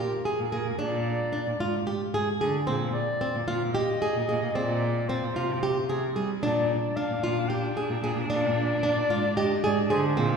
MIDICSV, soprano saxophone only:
0, 0, Header, 1, 2, 480
1, 0, Start_track
1, 0, Tempo, 536193
1, 713, Time_signature, 7, 3, 24, 8
1, 9281, End_track
2, 0, Start_track
2, 0, Title_t, "Soprano saxophone"
2, 0, Program_c, 0, 64
2, 0, Note_on_c, 0, 70, 57
2, 227, Note_on_c, 0, 68, 53
2, 240, Note_off_c, 0, 70, 0
2, 459, Note_on_c, 0, 70, 61
2, 473, Note_off_c, 0, 68, 0
2, 704, Note_off_c, 0, 70, 0
2, 710, Note_on_c, 0, 74, 69
2, 1637, Note_off_c, 0, 74, 0
2, 2391, Note_on_c, 0, 72, 74
2, 2500, Note_off_c, 0, 72, 0
2, 2630, Note_on_c, 0, 74, 86
2, 3080, Note_off_c, 0, 74, 0
2, 3345, Note_on_c, 0, 75, 90
2, 4076, Note_on_c, 0, 74, 84
2, 4090, Note_off_c, 0, 75, 0
2, 4552, Note_on_c, 0, 72, 64
2, 4565, Note_off_c, 0, 74, 0
2, 5514, Note_off_c, 0, 72, 0
2, 5769, Note_on_c, 0, 74, 69
2, 6236, Note_on_c, 0, 77, 74
2, 6250, Note_off_c, 0, 74, 0
2, 6706, Note_on_c, 0, 79, 77
2, 6720, Note_off_c, 0, 77, 0
2, 7190, Note_off_c, 0, 79, 0
2, 7432, Note_on_c, 0, 74, 96
2, 8392, Note_on_c, 0, 75, 87
2, 8405, Note_off_c, 0, 74, 0
2, 8632, Note_off_c, 0, 75, 0
2, 8637, Note_on_c, 0, 74, 75
2, 8871, Note_on_c, 0, 72, 85
2, 8885, Note_off_c, 0, 74, 0
2, 9281, Note_off_c, 0, 72, 0
2, 9281, End_track
0, 0, End_of_file